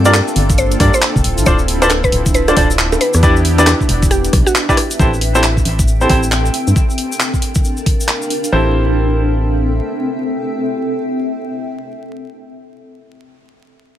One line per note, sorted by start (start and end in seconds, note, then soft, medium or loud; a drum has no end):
0.00 0.21 G2 medium
0.00 1.23 A#3 medium
0.00 1.25 A#3 medium
0.00 1.23 D4 medium
0.00 5.62 D4 medium
0.00 2.97 F4 medium
0.00 2.97 A4 medium
0.00 1.96 G5 medium
0.05 0.14 D4 loud
0.05 0.14 F4 medium
0.05 0.14 G4 medium
0.05 0.14 A#4 medium
0.05 0.14 D5 loud
0.05 cross-stick soft
0.05 closed hi-hat medium
0.05 shaker medium
0.14 clap loud
0.14 closed hi-hat medium
0.14 high bongo medium
0.14 shaker medium
0.28 shaker soft
0.36 0.76 G1 medium
0.36 open hi-hat loud
0.50 kick loud
0.50 closed hi-hat soft
0.50 shaker medium
0.58 0.76 C5 medium
0.58 closed hi-hat medium
0.58 shaker medium
0.72 closed hi-hat medium
0.72 shaker soft
0.80 0.90 G2 medium
0.80 0.89 D4 medium
0.80 0.89 F4 medium
0.80 0.89 G4 medium
0.80 0.89 A#4 medium
0.80 0.89 D5 medium
0.80 kick loud
0.80 cross-stick medium
0.80 open hi-hat loud
0.94 1.02 C5 medium
0.94 shaker medium
1.02 clap loud
1.02 closed hi-hat medium
1.02 shaker medium
1.16 1.22 F1 loud
1.16 kick medium
1.16 shaker soft
1.24 1.39 D1 medium
1.24 2.99 C4 medium
1.24 2.99 E4 medium
1.24 open hi-hat loud
1.38 1.44 A1 loud
1.38 open hi-hat medium
1.38 shaker medium
1.46 2.09 D1 loud
1.46 1.55 D4 medium
1.46 1.55 F4 medium
1.46 1.55 A4 medium
1.46 1.64 C5 loud
1.46 1.55 C5 medium
1.46 1.55 D5 medium
1.46 kick loud
1.46 closed hi-hat medium
1.46 shaker medium
1.59 shaker soft
1.68 open hi-hat loud
1.82 1.87 D4 loud
1.82 1.87 F4 medium
1.82 1.87 A4 medium
1.82 1.90 B4 medium
1.82 1.87 C5 medium
1.82 1.87 D5 loud
1.82 cross-stick soft
1.82 closed hi-hat medium
1.82 shaker medium
1.90 clap loud
1.90 closed hi-hat medium
1.90 high bongo medium
1.90 shaker medium
2.04 2.19 B4 loud
2.04 3.77 A5 medium
2.04 kick medium
2.04 shaker soft
2.12 2.53 D1 medium
2.12 open hi-hat loud
2.26 kick loud
2.26 closed hi-hat soft
2.26 shaker medium
2.34 2.52 B4 loud
2.34 closed hi-hat medium
2.34 shaker medium
2.48 2.55 D4 medium
2.48 2.55 F4 medium
2.48 2.55 A4 medium
2.48 2.55 C5 medium
2.48 2.55 D5 medium
2.48 cross-stick medium
2.48 closed hi-hat medium
2.48 high bongo medium
2.48 shaker soft
2.57 2.97 D1 loud
2.57 2.65 D4 medium
2.57 2.65 F4 medium
2.57 2.65 A4 medium
2.57 2.65 C5 medium
2.57 2.65 D5 loud
2.57 kick loud
2.57 open hi-hat loud
2.70 shaker medium
2.79 clap loud
2.79 closed hi-hat medium
2.79 shaker medium
2.92 high bongo medium
2.92 shaker soft
3.01 4.97 B3 medium
3.01 4.97 D4 medium
3.01 4.97 E4 medium
3.01 4.97 G4 medium
3.01 3.14 B4 medium
3.01 open hi-hat loud
3.13 3.74 E2 medium
3.13 cross-stick medium
3.13 shaker medium
3.19 3.32 D4 loud
3.19 3.32 E4 medium
3.19 3.32 G4 medium
3.19 5.62 B4 medium
3.19 3.32 B4 medium
3.19 3.32 D5 loud
3.19 kick loud
3.19 closed hi-hat medium
3.23 shaker medium
3.36 shaker soft
3.45 6.54 E5 medium
3.45 open hi-hat loud
3.58 3.67 D4 loud
3.58 3.67 E4 medium
3.58 3.67 G4 medium
3.58 3.67 B4 medium
3.58 3.67 D5 loud
3.58 cross-stick soft
3.58 closed hi-hat medium
3.58 shaker medium
3.67 clap loud
3.67 closed hi-hat medium
3.67 high bongo medium
3.67 shaker medium
3.81 kick medium
3.81 shaker soft
3.89 4.29 E1 medium
3.89 8.52 G5 medium
3.89 open hi-hat loud
4.03 kick loud
4.03 closed hi-hat soft
4.03 shaker medium
4.11 4.28 G4 medium
4.11 closed hi-hat medium
4.11 shaker medium
4.25 closed hi-hat medium
4.25 shaker soft
4.33 4.43 B1 medium
4.33 kick loud
4.33 cross-stick medium
4.33 open hi-hat loud
4.46 4.55 F#4 medium
4.46 shaker medium
4.55 clap loud
4.55 closed hi-hat medium
4.55 shaker medium
4.69 4.74 D4 loud
4.69 4.74 E4 medium
4.69 4.74 G4 medium
4.69 4.74 B4 medium
4.69 4.74 D5 loud
4.69 kick medium
4.69 shaker soft
4.77 cross-stick medium
4.77 open hi-hat loud
4.91 open hi-hat medium
4.91 shaker medium
4.99 5.62 A1 loud
4.99 5.08 C4 medium
4.99 7.35 C4 medium
4.99 5.08 E4 medium
4.99 5.08 G4 medium
4.99 5.08 A4 medium
4.99 5.08 C5 medium
4.99 kick loud
4.99 shaker medium
5.14 shaker soft
5.21 open hi-hat loud
5.35 5.41 C4 medium
5.35 5.41 E4 medium
5.35 5.41 G4 medium
5.35 5.41 A4 medium
5.35 5.41 C5 loud
5.35 shaker medium
5.43 clap loud
5.43 shaker medium
5.57 kick medium
5.57 shaker soft
5.65 6.06 A1 medium
5.65 open hi-hat loud
5.79 kick loud
5.79 shaker medium
5.88 shaker medium
6.01 6.08 C4 medium
6.01 6.08 E4 medium
6.01 6.08 G4 medium
6.01 6.08 A4 medium
6.01 6.08 C5 medium
6.01 shaker soft
6.10 6.50 A1 loud
6.10 6.18 C4 medium
6.10 6.18 E4 medium
6.10 6.18 G4 medium
6.10 6.18 A4 medium
6.10 6.18 C5 medium
6.10 kick loud
6.10 open hi-hat loud
6.23 shaker medium
6.32 clap loud
6.32 shaker medium
6.46 shaker soft
6.54 8.52 D4 medium
6.54 open hi-hat loud
6.67 6.73 G2 medium
6.67 8.52 A#4 medium
6.67 shaker medium
6.76 kick loud
6.76 shaker medium
6.90 shaker soft
6.98 open hi-hat loud
7.12 shaker medium
7.20 clap loud
7.20 shaker medium
7.34 kick medium
7.34 shaker soft
7.42 open hi-hat loud
7.55 kick loud
7.55 shaker medium
7.65 shaker medium
7.77 shaker soft
7.86 kick loud
7.86 open hi-hat loud
8.00 shaker medium
8.08 clap loud
8.22 shaker soft
8.30 open hi-hat loud
8.44 open hi-hat medium
8.44 shaker medium
8.52 9.81 A1 medium
8.52 11.67 C4 medium
8.52 11.67 E4 medium
8.52 11.67 G4 medium
8.52 11.67 A4 medium
8.52 11.67 C5 medium
8.61 11.75 A4 medium
8.68 11.82 E5 medium
8.73 11.87 G5 medium